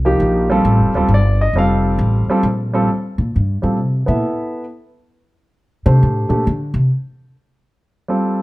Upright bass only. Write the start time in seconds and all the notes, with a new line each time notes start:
Already playing: C2
0.20 A#1
0.65 A1
0.79 F1
0.94 D1
1.08 G1
1.53 F1
1.99 A1
2.28 muted upright bass stroke
2.43 A#1
3.18 A#2
3.36 G2
3.63 A2
3.81 C3
4.08 A#2
5.86 C3
6.03 A2
6.30 A#2
6.47 D3
6.74 C3